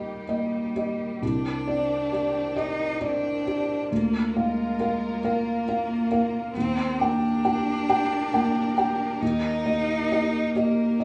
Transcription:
Already playing: felt piano D#2 A#3 G4 D#5, cello G3, string section A#3 D#4 G4
0.29 felt piano A#3 D#5
0.76 felt piano G4 D#5
1.22 felt piano C2, string section D#3 C4 G4, cello D4
1.67 felt piano C4 D5
2.12 felt piano G4 D5
2.56 cello D#4, felt piano G4 D#5
3.01 felt piano C4 D5, cello D4
3.47 felt piano G4 D5
3.90 felt piano D2, string section A#3 F4 A#4, cello A#3
4.36 cello G#3, felt piano A#3 F5
4.80 felt piano A#4 F5
5.23 cello A#3, felt piano A#4 F5
5.68 felt piano A#3 F5
6.11 felt piano A#4 F5
6.54 felt piano D#2, string section A#3 G4 A#4, cello C4
7.00 felt piano A#3 G5, cello D4
7.45 felt piano G4 G5
7.89 felt piano G4 G5
8.34 felt piano A#3 G5
8.78 felt piano G4 G5
9.21 felt piano D#2, cello D#4
9.66 felt piano A#3 D#5
10.12 felt piano G4 D#5
10.55 cello A#3, felt piano G4 D#5
11.00 felt piano A#3 D#5

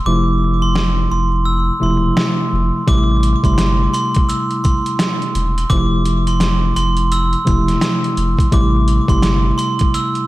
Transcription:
0.06 sub bass F1, tine electric piano C3 F3 A3 E4, glockenspiel D6
0.62 glockenspiel C6
0.75 snare
1.11 sub bass F1, glockenspiel C6
1.46 glockenspiel E6
1.80 sub bass E1, tine electric piano C3 F3 A3 E4, glockenspiel C6
2.17 snare
2.53 sub bass F1
2.87 sub bass A1, tine electric piano C3 G3 A3 E4, glockenspiel D6, kick, closed hi-hat
3.23 closed hi-hat
3.43 sub bass G1, tine electric piano C3 G3 A3 E4, glockenspiel C6, kick, closed hi-hat
3.58 sub bass G1, snare, closed hi-hat
3.94 glockenspiel C6, closed hi-hat
4.14 kick, closed hi-hat
4.29 glockenspiel E6, closed hi-hat
4.51 closed hi-hat
4.64 glockenspiel C6, kick, closed hi-hat
4.86 closed hi-hat
4.99 snare, closed hi-hat
5.22 closed hi-hat
5.35 sub bass E1, closed hi-hat
5.58 closed hi-hat
5.70 sub bass F1, tine electric piano C3 F3 A3 E4, glockenspiel D6, kick, closed hi-hat
6.05 closed hi-hat
6.27 glockenspiel C6, closed hi-hat
6.40 snare, closed hi-hat
6.76 sub bass F1, glockenspiel C6, closed hi-hat
6.97 closed hi-hat
7.12 glockenspiel E6, closed hi-hat
7.33 closed hi-hat
7.45 sub bass E1, tine electric piano C3 F3 A3 E4, glockenspiel C6, kick, closed hi-hat
7.68 snare, closed hi-hat
7.81 snare, closed hi-hat
8.04 closed hi-hat
8.17 sub bass F1, closed hi-hat
8.39 kick, closed hi-hat
8.52 sub bass A1, tine electric piano C3 G3 A3 E4, glockenspiel D6, kick, closed hi-hat
8.88 closed hi-hat
9.08 sub bass G1, tine electric piano C3 G3 A3 E4, glockenspiel C6, kick, closed hi-hat
9.22 sub bass G1, snare, closed hi-hat
9.58 glockenspiel C6, closed hi-hat
9.79 kick, closed hi-hat
9.94 glockenspiel E6, closed hi-hat
10.15 closed hi-hat

